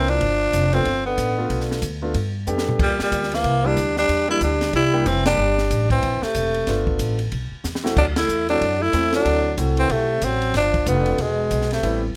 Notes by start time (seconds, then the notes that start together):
Already playing: C2 E3 A#3 C4 D4 E4 A#4
0.08 F3 D4, ride
0.21 G1, kick, ride
0.53 F1, kick, hi-hat pedal, ride
0.73 F3 A3 B3 C4 D4 F4, ride
0.85 G1, kick, ride
1.06 D3 B3
1.18 A1, kick, hi-hat pedal, ride
1.38 A3 B3 D4 F4
1.50 B1, kick, ride
1.61 snare
1.71 snare
1.82 D2, kick, hi-hat pedal, ride
2.02 A3 B3 D4 F4
2.14 G2, kick, ride
2.47 F2 A3 B3 D4 G4, hi-hat pedal
2.58 snare
2.69 floor tom
2.79 E2 A#2 G3, kick, crash
2.99 A#2 G3, muted upright bass stroke, snare
3.12 D2, kick, hi-hat pedal, ride
3.23 snare
3.32 E3 A#3, snare, ride
3.44 C2, kick, ride
3.64 G3 A#3 D4 E4
3.77 D2, kick, hi-hat pedal, ride
3.97 G3 D4, snare
4.09 E2, kick, ride
4.28 G3 A#3 D4 E4
4.41 D2 G3 D4, kick, hi-hat pedal, ride
4.61 snare, ride
4.73 C2 G3 E4, kick, ride
4.93 G3 A#3 D4 G4
5.06 F1 E3 C4, kick, hi-hat pedal, ride
5.25 G3 A#3 D4 G4, snare, ride
5.38 G1
5.58 snare
5.70 A1, kick, hi-hat pedal, ride
5.90 E3 C4, kick, ride
6.03 A#1, kick, ride
6.22 C3 A3, muted upright bass stroke, snare
6.34 E1, kick, hi-hat pedal, ride
6.54 ride
6.67 G1 A3 B3 D4 F4, kick, snare, ride
6.87 kick
6.99 A1, kick, hi-hat pedal, ride
7.19 ride
7.32 B1, kick, ride
7.52 muted upright bass stroke
7.64 E2, snare, hi-hat pedal
7.75 snare
7.84 A3 C4 E4 F#4, snare
7.97 D2 F#3 D4, kick, crash
8.16 A3 E4, snare, ride
8.29 E2, hi-hat pedal
8.49 F#3 A3 C4 D4 E4 F#4, ride
8.61 F#2, kick, ride
8.82 A3 E4
8.93 E2 A3 C4 E4 A4, kick, hi-hat pedal, ride
9.12 F#3 D4, snare, ride
9.25 D2, kick, ride
9.57 C2 A3 C4 E4 F#4, kick, hi-hat pedal, ride
9.77 E3 C4, ride
9.89 B1 C3 A3, kick, ride
10.21 A1 F#3 C4, kick, hi-hat pedal, ride
10.42 ride
10.54 G1 F3 D4, kick, snare, ride
10.74 kick, ride
10.85 F1 D3 A3 B3 D4 F4, kick, hi-hat pedal, ride
11.06 ride
11.18 E1 B2 G#3, kick, ride
11.51 B1, kick, hi-hat pedal, ride
11.61 snare
11.71 C3 A3, snare, ride
11.83 A1 G3 B3 C4 E4, kick, ride